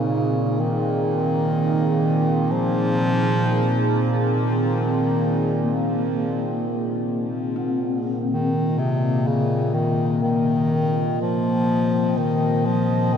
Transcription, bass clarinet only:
0, 0, Header, 1, 2, 480
1, 0, Start_track
1, 0, Key_signature, -3, "minor"
1, 0, Tempo, 967742
1, 283, Time_signature, 4, 2, 24, 8
1, 6534, End_track
2, 0, Start_track
2, 0, Title_t, "Bass clarinet"
2, 0, Program_c, 0, 71
2, 0, Note_on_c, 0, 49, 75
2, 296, Note_on_c, 0, 51, 88
2, 303, Note_off_c, 0, 49, 0
2, 1249, Note_on_c, 0, 53, 107
2, 1256, Note_off_c, 0, 51, 0
2, 2072, Note_off_c, 0, 53, 0
2, 2196, Note_on_c, 0, 51, 82
2, 3139, Note_off_c, 0, 51, 0
2, 4120, Note_on_c, 0, 51, 77
2, 4359, Note_on_c, 0, 48, 79
2, 4366, Note_off_c, 0, 51, 0
2, 4597, Note_on_c, 0, 49, 83
2, 4605, Note_off_c, 0, 48, 0
2, 4830, Note_on_c, 0, 51, 74
2, 4838, Note_off_c, 0, 49, 0
2, 5072, Note_off_c, 0, 51, 0
2, 5075, Note_on_c, 0, 51, 86
2, 5539, Note_off_c, 0, 51, 0
2, 5562, Note_on_c, 0, 53, 81
2, 6037, Note_on_c, 0, 51, 83
2, 6044, Note_off_c, 0, 53, 0
2, 6276, Note_on_c, 0, 53, 82
2, 6283, Note_off_c, 0, 51, 0
2, 6514, Note_on_c, 0, 51, 101
2, 6522, Note_off_c, 0, 53, 0
2, 6534, Note_off_c, 0, 51, 0
2, 6534, End_track
0, 0, End_of_file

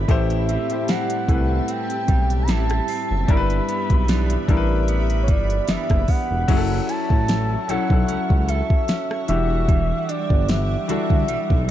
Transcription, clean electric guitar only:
0, 0, Header, 1, 2, 480
1, 0, Start_track
1, 0, Tempo, 800000
1, 52, Time_signature, 4, 2, 24, 8
1, 7024, End_track
2, 0, Start_track
2, 0, Title_t, "Clean electric guitar"
2, 0, Program_c, 0, 27
2, 0, Note_on_c, 0, 52, 66
2, 0, Note_on_c, 0, 59, 58
2, 54, Note_on_c, 0, 45, 87
2, 57, Note_on_c, 0, 64, 70
2, 104, Note_off_c, 0, 59, 0
2, 294, Note_on_c, 0, 60, 65
2, 529, Note_off_c, 0, 60, 0
2, 531, Note_off_c, 0, 52, 0
2, 533, Note_on_c, 0, 55, 64
2, 536, Note_on_c, 0, 60, 65
2, 537, Note_off_c, 0, 64, 0
2, 540, Note_on_c, 0, 64, 70
2, 770, Note_off_c, 0, 55, 0
2, 772, Note_on_c, 0, 55, 59
2, 1003, Note_off_c, 0, 60, 0
2, 1010, Note_on_c, 0, 60, 64
2, 1247, Note_off_c, 0, 55, 0
2, 1249, Note_on_c, 0, 55, 61
2, 1488, Note_off_c, 0, 60, 0
2, 1490, Note_off_c, 0, 55, 0
2, 1493, Note_on_c, 0, 55, 62
2, 1495, Note_on_c, 0, 60, 66
2, 1496, Note_off_c, 0, 64, 0
2, 1499, Note_on_c, 0, 64, 73
2, 1726, Note_off_c, 0, 60, 0
2, 1733, Note_on_c, 0, 60, 59
2, 1969, Note_off_c, 0, 45, 0
2, 1972, Note_on_c, 0, 43, 83
2, 1973, Note_off_c, 0, 64, 0
2, 1976, Note_on_c, 0, 62, 70
2, 2024, Note_off_c, 0, 60, 0
2, 2213, Note_on_c, 0, 59, 66
2, 2448, Note_off_c, 0, 59, 0
2, 2449, Note_off_c, 0, 55, 0
2, 2451, Note_off_c, 0, 62, 0
2, 2451, Note_on_c, 0, 52, 66
2, 2455, Note_on_c, 0, 59, 67
2, 2458, Note_on_c, 0, 62, 72
2, 2690, Note_off_c, 0, 52, 0
2, 2692, Note_on_c, 0, 52, 64
2, 2926, Note_off_c, 0, 59, 0
2, 2933, Note_on_c, 0, 59, 65
2, 3170, Note_off_c, 0, 52, 0
2, 3172, Note_on_c, 0, 52, 62
2, 3408, Note_off_c, 0, 59, 0
2, 3409, Note_off_c, 0, 52, 0
2, 3412, Note_off_c, 0, 62, 0
2, 3412, Note_on_c, 0, 52, 64
2, 3415, Note_on_c, 0, 59, 67
2, 3419, Note_on_c, 0, 62, 69
2, 3647, Note_off_c, 0, 59, 0
2, 3654, Note_on_c, 0, 59, 63
2, 3891, Note_off_c, 0, 52, 0
2, 3892, Note_off_c, 0, 43, 0
2, 3894, Note_on_c, 0, 54, 79
2, 3945, Note_off_c, 0, 59, 0
2, 3947, Note_off_c, 0, 62, 0
2, 4135, Note_on_c, 0, 64, 62
2, 4614, Note_on_c, 0, 61, 64
2, 4615, Note_off_c, 0, 64, 0
2, 4617, Note_on_c, 0, 64, 66
2, 4621, Note_on_c, 0, 69, 66
2, 4845, Note_off_c, 0, 61, 0
2, 4853, Note_on_c, 0, 61, 67
2, 5084, Note_off_c, 0, 69, 0
2, 5091, Note_on_c, 0, 69, 70
2, 5325, Note_off_c, 0, 61, 0
2, 5332, Note_on_c, 0, 61, 62
2, 5571, Note_on_c, 0, 52, 78
2, 5623, Note_off_c, 0, 69, 0
2, 5624, Note_off_c, 0, 61, 0
2, 5809, Note_off_c, 0, 52, 0
2, 5811, Note_on_c, 0, 52, 85
2, 5829, Note_off_c, 0, 54, 0
2, 6052, Note_on_c, 0, 62, 69
2, 6070, Note_off_c, 0, 64, 0
2, 6532, Note_off_c, 0, 62, 0
2, 6532, Note_on_c, 0, 55, 64
2, 6535, Note_on_c, 0, 62, 63
2, 6539, Note_on_c, 0, 66, 72
2, 6769, Note_off_c, 0, 55, 0
2, 6772, Note_on_c, 0, 55, 63
2, 7005, Note_off_c, 0, 66, 0
2, 7024, Note_off_c, 0, 52, 0
2, 7024, Note_off_c, 0, 55, 0
2, 7024, Note_off_c, 0, 62, 0
2, 7024, End_track
0, 0, End_of_file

